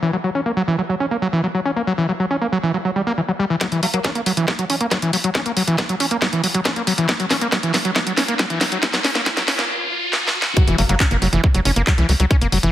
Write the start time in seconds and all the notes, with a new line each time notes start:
0.02 E3
0.13 F#3
0.24 F#3
0.35 C#4
0.46 A#3
0.57 F#3
0.68 E3
0.78 F#3
0.89 F#3
1.00 C#4
1.11 A#3
1.22 F#3
1.33 E3
1.44 F#3
1.55 F#3
1.65 C#4
1.76 A#3
1.87 F#3
1.98 E3
2.09 F#3
2.20 F#3
2.31 C#4
2.41 A#3
2.52 F#3
2.63 E3
2.74 F#3
2.85 F#3
2.96 G3
3.07 A#3
3.18 E3
3.28 F#3
3.39 G3
3.50 E3
3.61 F#3, kick, snare, closed hi-hat, riser
3.72 E3, closed hi-hat
3.83 F#3 A#3, open hi-hat
3.94 F#3 A#3, closed hi-hat
4.04 A#3 C#4, kick, snare, closed hi-hat
4.15 A#3, closed hi-hat
4.26 F#3, open hi-hat
4.37 E3, closed hi-hat
4.48 F#3, kick, snare
4.59 F#3, closed hi-hat
4.70 C#4, open hi-hat
4.81 A#3, closed hi-hat
4.91 F#3, kick, snare, closed hi-hat
5.02 E3, closed hi-hat
5.13 F#3, open hi-hat
5.24 F#3, closed hi-hat
5.35 C#4, kick, snare, closed hi-hat
5.46 A#3, closed hi-hat
5.57 F#3, open hi-hat
5.68 E3, closed hi-hat
5.78 F#3, kick, snare, closed hi-hat
5.89 F#3, closed hi-hat
6.00 C#4, open hi-hat
6.11 A#3, closed hi-hat
6.22 F#3, kick, snare, closed hi-hat
6.33 E3, closed hi-hat
6.44 F#3, open hi-hat
6.54 F#3, closed hi-hat
6.65 C#4, kick, snare, closed hi-hat
6.76 A#3, closed hi-hat
6.87 F#3, open hi-hat
6.98 E3, closed hi-hat
7.09 F#3, kick, snare, closed hi-hat
7.20 F#3, closed hi-hat
7.31 C#4, snare, open hi-hat
7.41 A#3, closed hi-hat
7.52 F#3, kick, snare, closed hi-hat
7.63 E3, closed hi-hat
7.74 F#3, snare, open hi-hat
7.85 F#3, closed hi-hat
7.96 F#3, kick, snare
8.07 F#3, closed hi-hat
8.18 C#4, snare, open hi-hat
8.28 A#3, closed hi-hat
8.39 F#3, kick, snare, closed hi-hat
8.50 E3, closed hi-hat
8.61 F#3, snare, open hi-hat
8.72 F#3, closed hi-hat
8.83 F#3, kick, snare, closed hi-hat
8.94 F#3, snare, closed hi-hat
9.04 C#4, snare, open hi-hat
9.15 A#3, snare, closed hi-hat
9.26 F#3, kick, snare, closed hi-hat
9.37 F#3, snare, closed hi-hat
9.48 C#4, snare, open hi-hat
9.59 A#3, snare, closed hi-hat
10.13 snare
10.28 snare
10.42 snare
10.57 F#3, kick, closed hi-hat, impact
10.68 F#1 E3, closed hi-hat
10.78 F#1 F#3 A#3, open hi-hat
10.89 F#1 F#3 A#3, closed hi-hat
11.00 A#3 C#4, kick, clap, closed hi-hat
11.11 F#1 A#3, closed hi-hat
11.22 F#1 F#3, open hi-hat
11.33 F#1 E3, closed hi-hat
11.44 F#3, kick
11.54 F#1 F#3, closed hi-hat
11.65 F#1 C#4, open hi-hat
11.76 F#1 A#3, closed hi-hat
11.87 F#3, kick, clap, closed hi-hat
11.98 C#2 E3, closed hi-hat
12.09 C#2 F#3, open hi-hat
12.20 C#2 F#3, closed hi-hat
12.31 C#4, kick, closed hi-hat
12.41 F#1 A#3, closed hi-hat
12.52 F#1 F#3, open hi-hat
12.63 F#1 E3, closed hi-hat